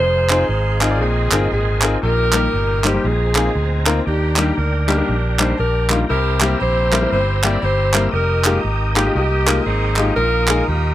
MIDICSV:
0, 0, Header, 1, 6, 480
1, 0, Start_track
1, 0, Key_signature, -3, "major"
1, 0, Tempo, 509338
1, 1907, Time_signature, 4, 2, 24, 8
1, 10314, End_track
2, 0, Start_track
2, 0, Title_t, "Tonewheel organ"
2, 0, Program_c, 0, 16
2, 0, Note_on_c, 0, 68, 66
2, 0, Note_on_c, 0, 75, 67
2, 0, Note_on_c, 0, 77, 59
2, 0, Note_on_c, 0, 84, 74
2, 937, Note_off_c, 0, 68, 0
2, 938, Note_off_c, 0, 77, 0
2, 943, Note_on_c, 0, 70, 70
2, 944, Note_on_c, 0, 80, 63
2, 1868, Note_off_c, 0, 84, 0
2, 1895, Note_off_c, 0, 80, 0
2, 1910, Note_on_c, 0, 79, 63
2, 2837, Note_off_c, 0, 75, 0
2, 2845, Note_off_c, 0, 70, 0
2, 2858, Note_off_c, 0, 79, 0
2, 2873, Note_on_c, 0, 82, 60
2, 2875, Note_on_c, 0, 72, 66
2, 2878, Note_on_c, 0, 80, 64
2, 3821, Note_off_c, 0, 72, 0
2, 3823, Note_off_c, 0, 80, 0
2, 3825, Note_on_c, 0, 79, 60
2, 3826, Note_on_c, 0, 74, 67
2, 5728, Note_off_c, 0, 74, 0
2, 5743, Note_on_c, 0, 72, 68
2, 5745, Note_on_c, 0, 88, 77
2, 7629, Note_off_c, 0, 79, 0
2, 7633, Note_off_c, 0, 82, 0
2, 7641, Note_on_c, 0, 70, 68
2, 7643, Note_on_c, 0, 79, 66
2, 7646, Note_off_c, 0, 72, 0
2, 7647, Note_off_c, 0, 88, 0
2, 7649, Note_on_c, 0, 75, 67
2, 7649, Note_on_c, 0, 87, 81
2, 9556, Note_off_c, 0, 79, 0
2, 9578, Note_on_c, 0, 77, 58
2, 10314, Note_off_c, 0, 70, 0
2, 10314, Note_off_c, 0, 75, 0
2, 10314, Note_off_c, 0, 77, 0
2, 10314, Note_off_c, 0, 87, 0
2, 10314, End_track
3, 0, Start_track
3, 0, Title_t, "Saxophone section"
3, 0, Program_c, 1, 65
3, 0, Note_on_c, 1, 63, 85
3, 0, Note_on_c, 1, 68, 89
3, 0, Note_on_c, 1, 72, 116
3, 431, Note_off_c, 1, 72, 0
3, 455, Note_on_c, 1, 72, 112
3, 739, Note_off_c, 1, 72, 0
3, 750, Note_on_c, 1, 70, 98
3, 909, Note_off_c, 1, 68, 0
3, 910, Note_off_c, 1, 63, 0
3, 935, Note_on_c, 1, 68, 97
3, 939, Note_off_c, 1, 70, 0
3, 939, Note_on_c, 1, 63, 69
3, 947, Note_on_c, 1, 60, 70
3, 1412, Note_off_c, 1, 68, 0
3, 1417, Note_off_c, 1, 60, 0
3, 1422, Note_off_c, 1, 63, 0
3, 1424, Note_on_c, 1, 68, 90
3, 1429, Note_on_c, 1, 60, 67
3, 1433, Note_on_c, 1, 63, 65
3, 1788, Note_off_c, 1, 68, 0
3, 1874, Note_off_c, 1, 60, 0
3, 1876, Note_off_c, 1, 63, 0
3, 1906, Note_on_c, 1, 67, 75
3, 1913, Note_on_c, 1, 63, 76
3, 1913, Note_on_c, 1, 70, 111
3, 2652, Note_off_c, 1, 70, 0
3, 2677, Note_off_c, 1, 67, 0
3, 2688, Note_on_c, 1, 67, 83
3, 2832, Note_off_c, 1, 63, 0
3, 2855, Note_off_c, 1, 67, 0
3, 2860, Note_on_c, 1, 63, 59
3, 2861, Note_on_c, 1, 60, 59
3, 2872, Note_on_c, 1, 68, 82
3, 3649, Note_off_c, 1, 68, 0
3, 3786, Note_off_c, 1, 60, 0
3, 3786, Note_off_c, 1, 63, 0
3, 3828, Note_on_c, 1, 67, 87
3, 3831, Note_on_c, 1, 62, 62
3, 3835, Note_on_c, 1, 58, 67
3, 4274, Note_off_c, 1, 67, 0
3, 4307, Note_on_c, 1, 70, 91
3, 4585, Note_off_c, 1, 70, 0
3, 4605, Note_off_c, 1, 62, 0
3, 4617, Note_on_c, 1, 62, 75
3, 4617, Note_on_c, 1, 70, 92
3, 4620, Note_on_c, 1, 67, 66
3, 4753, Note_off_c, 1, 58, 0
3, 5058, Note_off_c, 1, 70, 0
3, 5073, Note_on_c, 1, 72, 94
3, 5244, Note_off_c, 1, 62, 0
3, 5244, Note_off_c, 1, 67, 0
3, 5254, Note_on_c, 1, 70, 89
3, 5255, Note_on_c, 1, 62, 68
3, 5255, Note_on_c, 1, 67, 70
3, 5260, Note_off_c, 1, 72, 0
3, 5599, Note_off_c, 1, 62, 0
3, 5599, Note_off_c, 1, 67, 0
3, 5622, Note_off_c, 1, 70, 0
3, 5734, Note_on_c, 1, 70, 95
3, 5742, Note_on_c, 1, 64, 72
3, 5743, Note_on_c, 1, 67, 77
3, 6187, Note_off_c, 1, 70, 0
3, 6207, Note_off_c, 1, 67, 0
3, 6214, Note_off_c, 1, 64, 0
3, 6219, Note_on_c, 1, 67, 77
3, 6225, Note_on_c, 1, 64, 80
3, 6226, Note_on_c, 1, 72, 103
3, 6685, Note_off_c, 1, 67, 0
3, 6687, Note_off_c, 1, 64, 0
3, 6689, Note_off_c, 1, 72, 0
3, 6696, Note_on_c, 1, 67, 74
3, 6699, Note_on_c, 1, 64, 74
3, 6700, Note_on_c, 1, 72, 99
3, 6982, Note_off_c, 1, 72, 0
3, 7001, Note_on_c, 1, 74, 102
3, 7161, Note_off_c, 1, 64, 0
3, 7169, Note_off_c, 1, 67, 0
3, 7172, Note_on_c, 1, 64, 74
3, 7181, Note_on_c, 1, 67, 73
3, 7185, Note_off_c, 1, 74, 0
3, 7187, Note_on_c, 1, 72, 101
3, 7577, Note_off_c, 1, 72, 0
3, 7626, Note_off_c, 1, 64, 0
3, 7630, Note_off_c, 1, 67, 0
3, 7647, Note_on_c, 1, 63, 75
3, 7651, Note_on_c, 1, 67, 72
3, 7664, Note_on_c, 1, 70, 99
3, 8101, Note_off_c, 1, 70, 0
3, 8417, Note_off_c, 1, 67, 0
3, 8429, Note_on_c, 1, 67, 90
3, 8580, Note_off_c, 1, 63, 0
3, 8605, Note_off_c, 1, 67, 0
3, 8622, Note_on_c, 1, 58, 76
3, 8622, Note_on_c, 1, 67, 98
3, 8627, Note_on_c, 1, 63, 68
3, 9071, Note_off_c, 1, 67, 0
3, 9082, Note_off_c, 1, 63, 0
3, 9086, Note_on_c, 1, 68, 92
3, 9091, Note_on_c, 1, 60, 74
3, 9093, Note_on_c, 1, 63, 70
3, 9458, Note_off_c, 1, 68, 0
3, 9545, Note_off_c, 1, 60, 0
3, 9546, Note_off_c, 1, 63, 0
3, 9547, Note_off_c, 1, 58, 0
3, 9554, Note_on_c, 1, 65, 80
3, 9558, Note_on_c, 1, 70, 110
3, 9565, Note_on_c, 1, 63, 88
3, 10018, Note_off_c, 1, 70, 0
3, 10058, Note_on_c, 1, 67, 99
3, 10314, Note_off_c, 1, 63, 0
3, 10314, Note_off_c, 1, 65, 0
3, 10314, Note_off_c, 1, 67, 0
3, 10314, End_track
4, 0, Start_track
4, 0, Title_t, "Upright piano"
4, 0, Program_c, 2, 0
4, 283, Note_on_c, 2, 63, 75
4, 286, Note_on_c, 2, 60, 79
4, 289, Note_on_c, 2, 65, 70
4, 289, Note_on_c, 2, 68, 74
4, 290, Note_on_c, 2, 72, 92
4, 398, Note_off_c, 2, 63, 0
4, 399, Note_off_c, 2, 60, 0
4, 401, Note_off_c, 2, 65, 0
4, 401, Note_off_c, 2, 68, 0
4, 402, Note_off_c, 2, 72, 0
4, 758, Note_on_c, 2, 63, 72
4, 759, Note_on_c, 2, 60, 80
4, 760, Note_on_c, 2, 65, 69
4, 762, Note_on_c, 2, 68, 66
4, 765, Note_on_c, 2, 75, 87
4, 819, Note_off_c, 2, 60, 0
4, 819, Note_off_c, 2, 63, 0
4, 820, Note_off_c, 2, 65, 0
4, 821, Note_off_c, 2, 68, 0
4, 822, Note_off_c, 2, 75, 0
4, 850, Note_on_c, 2, 60, 64
4, 850, Note_on_c, 2, 68, 58
4, 851, Note_on_c, 2, 63, 62
4, 852, Note_on_c, 2, 65, 59
4, 853, Note_on_c, 2, 74, 75
4, 944, Note_off_c, 2, 60, 0
4, 944, Note_off_c, 2, 63, 0
4, 944, Note_off_c, 2, 68, 0
4, 945, Note_off_c, 2, 65, 0
4, 945, Note_off_c, 2, 74, 0
4, 947, Note_on_c, 2, 46, 68
4, 1245, Note_on_c, 2, 63, 69
4, 1246, Note_on_c, 2, 60, 77
4, 1246, Note_on_c, 2, 65, 69
4, 1247, Note_on_c, 2, 68, 68
4, 1248, Note_on_c, 2, 70, 86
4, 1359, Note_off_c, 2, 60, 0
4, 1359, Note_off_c, 2, 63, 0
4, 1359, Note_off_c, 2, 65, 0
4, 1360, Note_off_c, 2, 68, 0
4, 1360, Note_off_c, 2, 70, 0
4, 1688, Note_off_c, 2, 46, 0
4, 1723, Note_on_c, 2, 60, 74
4, 1723, Note_on_c, 2, 63, 68
4, 1726, Note_on_c, 2, 65, 66
4, 1727, Note_on_c, 2, 68, 69
4, 1727, Note_on_c, 2, 70, 83
4, 1838, Note_off_c, 2, 60, 0
4, 1838, Note_off_c, 2, 63, 0
4, 1839, Note_off_c, 2, 65, 0
4, 1840, Note_off_c, 2, 68, 0
4, 1840, Note_off_c, 2, 70, 0
4, 1901, Note_on_c, 2, 46, 68
4, 2192, Note_on_c, 2, 55, 74
4, 2195, Note_on_c, 2, 63, 70
4, 2196, Note_on_c, 2, 58, 72
4, 2199, Note_on_c, 2, 67, 68
4, 2204, Note_on_c, 2, 70, 87
4, 2312, Note_off_c, 2, 55, 0
4, 2313, Note_off_c, 2, 63, 0
4, 2314, Note_off_c, 2, 58, 0
4, 2316, Note_off_c, 2, 67, 0
4, 2318, Note_off_c, 2, 70, 0
4, 2645, Note_off_c, 2, 46, 0
4, 2676, Note_on_c, 2, 63, 68
4, 2677, Note_on_c, 2, 55, 73
4, 2678, Note_on_c, 2, 58, 66
4, 2682, Note_on_c, 2, 67, 69
4, 2685, Note_on_c, 2, 72, 79
4, 2737, Note_off_c, 2, 63, 0
4, 2738, Note_off_c, 2, 55, 0
4, 2739, Note_off_c, 2, 58, 0
4, 2741, Note_off_c, 2, 67, 0
4, 2742, Note_off_c, 2, 72, 0
4, 2765, Note_on_c, 2, 58, 60
4, 2767, Note_on_c, 2, 63, 59
4, 2767, Note_on_c, 2, 67, 61
4, 2768, Note_on_c, 2, 55, 67
4, 2770, Note_on_c, 2, 72, 69
4, 2855, Note_on_c, 2, 46, 61
4, 2861, Note_off_c, 2, 58, 0
4, 2862, Note_off_c, 2, 55, 0
4, 2862, Note_off_c, 2, 63, 0
4, 2862, Note_off_c, 2, 67, 0
4, 2864, Note_off_c, 2, 72, 0
4, 3160, Note_on_c, 2, 58, 71
4, 3163, Note_on_c, 2, 60, 66
4, 3166, Note_on_c, 2, 68, 85
4, 3167, Note_on_c, 2, 63, 66
4, 3169, Note_on_c, 2, 65, 66
4, 3276, Note_off_c, 2, 58, 0
4, 3278, Note_off_c, 2, 60, 0
4, 3279, Note_off_c, 2, 63, 0
4, 3279, Note_off_c, 2, 68, 0
4, 3280, Note_off_c, 2, 65, 0
4, 3602, Note_off_c, 2, 46, 0
4, 3632, Note_on_c, 2, 58, 83
4, 3637, Note_on_c, 2, 65, 73
4, 3638, Note_on_c, 2, 63, 81
4, 3640, Note_on_c, 2, 60, 78
4, 3644, Note_on_c, 2, 70, 92
4, 3752, Note_off_c, 2, 58, 0
4, 3755, Note_off_c, 2, 63, 0
4, 3755, Note_off_c, 2, 65, 0
4, 3756, Note_off_c, 2, 60, 0
4, 3758, Note_off_c, 2, 70, 0
4, 3821, Note_on_c, 2, 51, 63
4, 4123, Note_on_c, 2, 58, 72
4, 4124, Note_on_c, 2, 62, 71
4, 4126, Note_on_c, 2, 55, 79
4, 4127, Note_on_c, 2, 63, 71
4, 4129, Note_on_c, 2, 67, 88
4, 4238, Note_off_c, 2, 58, 0
4, 4238, Note_off_c, 2, 62, 0
4, 4239, Note_off_c, 2, 55, 0
4, 4239, Note_off_c, 2, 63, 0
4, 4240, Note_off_c, 2, 67, 0
4, 4566, Note_off_c, 2, 51, 0
4, 4597, Note_on_c, 2, 55, 77
4, 4598, Note_on_c, 2, 62, 71
4, 4598, Note_on_c, 2, 63, 65
4, 4600, Note_on_c, 2, 58, 69
4, 4603, Note_on_c, 2, 67, 87
4, 4658, Note_off_c, 2, 55, 0
4, 4659, Note_off_c, 2, 58, 0
4, 4659, Note_off_c, 2, 62, 0
4, 4659, Note_off_c, 2, 63, 0
4, 4661, Note_off_c, 2, 67, 0
4, 4685, Note_on_c, 2, 55, 64
4, 4688, Note_on_c, 2, 58, 62
4, 4689, Note_on_c, 2, 62, 63
4, 4691, Note_on_c, 2, 67, 73
4, 4694, Note_on_c, 2, 63, 60
4, 4819, Note_off_c, 2, 55, 0
4, 4820, Note_off_c, 2, 58, 0
4, 4821, Note_off_c, 2, 62, 0
4, 4822, Note_off_c, 2, 67, 0
4, 4823, Note_off_c, 2, 63, 0
4, 5076, Note_on_c, 2, 55, 78
4, 5079, Note_on_c, 2, 58, 65
4, 5079, Note_on_c, 2, 62, 71
4, 5080, Note_on_c, 2, 63, 67
4, 5085, Note_on_c, 2, 67, 81
4, 5194, Note_off_c, 2, 55, 0
4, 5196, Note_off_c, 2, 58, 0
4, 5196, Note_off_c, 2, 62, 0
4, 5196, Note_off_c, 2, 63, 0
4, 5199, Note_off_c, 2, 67, 0
4, 5559, Note_on_c, 2, 55, 71
4, 5560, Note_on_c, 2, 58, 67
4, 5561, Note_on_c, 2, 62, 67
4, 5565, Note_on_c, 2, 63, 67
4, 5568, Note_on_c, 2, 65, 84
4, 5676, Note_off_c, 2, 55, 0
4, 5676, Note_off_c, 2, 58, 0
4, 5677, Note_off_c, 2, 62, 0
4, 5679, Note_off_c, 2, 63, 0
4, 5680, Note_off_c, 2, 65, 0
4, 5741, Note_on_c, 2, 48, 64
4, 6044, Note_on_c, 2, 55, 79
4, 6049, Note_on_c, 2, 58, 74
4, 6051, Note_on_c, 2, 60, 71
4, 6051, Note_on_c, 2, 67, 90
4, 6053, Note_on_c, 2, 64, 74
4, 6159, Note_off_c, 2, 55, 0
4, 6161, Note_off_c, 2, 58, 0
4, 6162, Note_off_c, 2, 60, 0
4, 6162, Note_off_c, 2, 67, 0
4, 6163, Note_off_c, 2, 64, 0
4, 6486, Note_off_c, 2, 48, 0
4, 6522, Note_on_c, 2, 55, 76
4, 6524, Note_on_c, 2, 58, 69
4, 6525, Note_on_c, 2, 60, 69
4, 6526, Note_on_c, 2, 70, 83
4, 6527, Note_on_c, 2, 64, 70
4, 6581, Note_off_c, 2, 55, 0
4, 6582, Note_off_c, 2, 58, 0
4, 6582, Note_off_c, 2, 60, 0
4, 6583, Note_off_c, 2, 70, 0
4, 6584, Note_off_c, 2, 64, 0
4, 6608, Note_on_c, 2, 55, 64
4, 6612, Note_on_c, 2, 58, 63
4, 6612, Note_on_c, 2, 70, 73
4, 6614, Note_on_c, 2, 60, 60
4, 6616, Note_on_c, 2, 64, 59
4, 6741, Note_off_c, 2, 55, 0
4, 6743, Note_off_c, 2, 58, 0
4, 6743, Note_off_c, 2, 70, 0
4, 6744, Note_off_c, 2, 60, 0
4, 6744, Note_off_c, 2, 64, 0
4, 7009, Note_on_c, 2, 55, 75
4, 7010, Note_on_c, 2, 58, 68
4, 7013, Note_on_c, 2, 64, 71
4, 7014, Note_on_c, 2, 60, 72
4, 7015, Note_on_c, 2, 67, 87
4, 7121, Note_off_c, 2, 55, 0
4, 7122, Note_off_c, 2, 58, 0
4, 7123, Note_off_c, 2, 64, 0
4, 7124, Note_off_c, 2, 60, 0
4, 7124, Note_off_c, 2, 67, 0
4, 7484, Note_on_c, 2, 55, 69
4, 7485, Note_on_c, 2, 58, 72
4, 7488, Note_on_c, 2, 60, 68
4, 7488, Note_on_c, 2, 64, 65
4, 7493, Note_on_c, 2, 70, 84
4, 7599, Note_off_c, 2, 55, 0
4, 7599, Note_off_c, 2, 58, 0
4, 7600, Note_off_c, 2, 60, 0
4, 7600, Note_off_c, 2, 64, 0
4, 7603, Note_off_c, 2, 70, 0
4, 7963, Note_on_c, 2, 56, 82
4, 7966, Note_on_c, 2, 58, 73
4, 7966, Note_on_c, 2, 63, 77
4, 7969, Note_on_c, 2, 65, 70
4, 7970, Note_on_c, 2, 67, 87
4, 8078, Note_off_c, 2, 56, 0
4, 8079, Note_off_c, 2, 63, 0
4, 8080, Note_off_c, 2, 58, 0
4, 8081, Note_off_c, 2, 65, 0
4, 8081, Note_off_c, 2, 67, 0
4, 8434, Note_on_c, 2, 58, 71
4, 8437, Note_on_c, 2, 56, 78
4, 8441, Note_on_c, 2, 63, 72
4, 8441, Note_on_c, 2, 65, 73
4, 8442, Note_on_c, 2, 67, 85
4, 8497, Note_off_c, 2, 58, 0
4, 8498, Note_off_c, 2, 56, 0
4, 8500, Note_off_c, 2, 63, 0
4, 8500, Note_off_c, 2, 65, 0
4, 8501, Note_off_c, 2, 67, 0
4, 8534, Note_on_c, 2, 58, 59
4, 8534, Note_on_c, 2, 63, 58
4, 8535, Note_on_c, 2, 56, 63
4, 8539, Note_on_c, 2, 65, 59
4, 8540, Note_on_c, 2, 67, 72
4, 8664, Note_off_c, 2, 56, 0
4, 8664, Note_off_c, 2, 58, 0
4, 8664, Note_off_c, 2, 63, 0
4, 8666, Note_off_c, 2, 65, 0
4, 8667, Note_off_c, 2, 67, 0
4, 8918, Note_on_c, 2, 56, 76
4, 8921, Note_on_c, 2, 58, 68
4, 8921, Note_on_c, 2, 63, 68
4, 8923, Note_on_c, 2, 65, 69
4, 8925, Note_on_c, 2, 70, 82
4, 9036, Note_off_c, 2, 56, 0
4, 9037, Note_off_c, 2, 58, 0
4, 9037, Note_off_c, 2, 63, 0
4, 9038, Note_off_c, 2, 65, 0
4, 9039, Note_off_c, 2, 70, 0
4, 9399, Note_on_c, 2, 56, 70
4, 9405, Note_on_c, 2, 58, 69
4, 9405, Note_on_c, 2, 65, 67
4, 9408, Note_on_c, 2, 63, 70
4, 9411, Note_on_c, 2, 67, 80
4, 9516, Note_off_c, 2, 56, 0
4, 9519, Note_off_c, 2, 58, 0
4, 9519, Note_off_c, 2, 65, 0
4, 9520, Note_off_c, 2, 63, 0
4, 9522, Note_off_c, 2, 67, 0
4, 9586, Note_on_c, 2, 46, 65
4, 9883, Note_on_c, 2, 56, 76
4, 9883, Note_on_c, 2, 58, 74
4, 9886, Note_on_c, 2, 63, 72
4, 9889, Note_on_c, 2, 65, 74
4, 9889, Note_on_c, 2, 68, 88
4, 9998, Note_off_c, 2, 56, 0
4, 9998, Note_off_c, 2, 58, 0
4, 9999, Note_off_c, 2, 63, 0
4, 10001, Note_off_c, 2, 65, 0
4, 10001, Note_off_c, 2, 68, 0
4, 10314, Note_off_c, 2, 46, 0
4, 10314, End_track
5, 0, Start_track
5, 0, Title_t, "Fingered electric bass"
5, 0, Program_c, 3, 33
5, 0, Note_on_c, 3, 29, 112
5, 394, Note_off_c, 3, 29, 0
5, 461, Note_on_c, 3, 32, 92
5, 943, Note_off_c, 3, 32, 0
5, 943, Note_on_c, 3, 34, 105
5, 1199, Note_off_c, 3, 34, 0
5, 1240, Note_on_c, 3, 31, 90
5, 1396, Note_off_c, 3, 31, 0
5, 1426, Note_on_c, 3, 32, 86
5, 1834, Note_off_c, 3, 32, 0
5, 1914, Note_on_c, 3, 34, 104
5, 2319, Note_off_c, 3, 34, 0
5, 2389, Note_on_c, 3, 31, 83
5, 2796, Note_off_c, 3, 31, 0
5, 2869, Note_on_c, 3, 34, 95
5, 3276, Note_off_c, 3, 34, 0
5, 3349, Note_on_c, 3, 38, 87
5, 3756, Note_off_c, 3, 38, 0
5, 3834, Note_on_c, 3, 39, 111
5, 4239, Note_off_c, 3, 39, 0
5, 4312, Note_on_c, 3, 38, 88
5, 4718, Note_off_c, 3, 38, 0
5, 4795, Note_on_c, 3, 34, 100
5, 5200, Note_off_c, 3, 34, 0
5, 5271, Note_on_c, 3, 34, 93
5, 5678, Note_off_c, 3, 34, 0
5, 5750, Note_on_c, 3, 36, 109
5, 6157, Note_off_c, 3, 36, 0
5, 6233, Note_on_c, 3, 34, 95
5, 6639, Note_off_c, 3, 34, 0
5, 6711, Note_on_c, 3, 31, 100
5, 7117, Note_off_c, 3, 31, 0
5, 7187, Note_on_c, 3, 31, 99
5, 7596, Note_off_c, 3, 31, 0
5, 7663, Note_on_c, 3, 29, 102
5, 8073, Note_off_c, 3, 29, 0
5, 8145, Note_on_c, 3, 32, 84
5, 8554, Note_off_c, 3, 32, 0
5, 8625, Note_on_c, 3, 36, 96
5, 9034, Note_off_c, 3, 36, 0
5, 9106, Note_on_c, 3, 32, 96
5, 9514, Note_off_c, 3, 32, 0
5, 9580, Note_on_c, 3, 34, 118
5, 9991, Note_off_c, 3, 34, 0
5, 10066, Note_on_c, 3, 39, 88
5, 10314, Note_off_c, 3, 39, 0
5, 10314, End_track
6, 0, Start_track
6, 0, Title_t, "Drums"
6, 278, Note_on_c, 9, 39, 97
6, 372, Note_off_c, 9, 39, 0
6, 764, Note_on_c, 9, 39, 86
6, 859, Note_off_c, 9, 39, 0
6, 1239, Note_on_c, 9, 39, 103
6, 1333, Note_off_c, 9, 39, 0
6, 1710, Note_on_c, 9, 39, 104
6, 1804, Note_off_c, 9, 39, 0
6, 2192, Note_on_c, 9, 39, 103
6, 2286, Note_off_c, 9, 39, 0
6, 2678, Note_on_c, 9, 39, 91
6, 2773, Note_off_c, 9, 39, 0
6, 3158, Note_on_c, 9, 39, 100
6, 3252, Note_off_c, 9, 39, 0
6, 3641, Note_on_c, 9, 39, 100
6, 3735, Note_off_c, 9, 39, 0
6, 4111, Note_on_c, 9, 39, 105
6, 4205, Note_off_c, 9, 39, 0
6, 4608, Note_on_c, 9, 39, 83
6, 4702, Note_off_c, 9, 39, 0
6, 5082, Note_on_c, 9, 39, 105
6, 5176, Note_off_c, 9, 39, 0
6, 5557, Note_on_c, 9, 39, 105
6, 5652, Note_off_c, 9, 39, 0
6, 6035, Note_on_c, 9, 39, 97
6, 6129, Note_off_c, 9, 39, 0
6, 6526, Note_on_c, 9, 39, 92
6, 6621, Note_off_c, 9, 39, 0
6, 7007, Note_on_c, 9, 39, 104
6, 7101, Note_off_c, 9, 39, 0
6, 7478, Note_on_c, 9, 39, 104
6, 7572, Note_off_c, 9, 39, 0
6, 7958, Note_on_c, 9, 39, 103
6, 8052, Note_off_c, 9, 39, 0
6, 8447, Note_on_c, 9, 39, 93
6, 8541, Note_off_c, 9, 39, 0
6, 8928, Note_on_c, 9, 39, 106
6, 9022, Note_off_c, 9, 39, 0
6, 9389, Note_on_c, 9, 39, 97
6, 9483, Note_off_c, 9, 39, 0
6, 9873, Note_on_c, 9, 39, 105
6, 9967, Note_off_c, 9, 39, 0
6, 10314, End_track
0, 0, End_of_file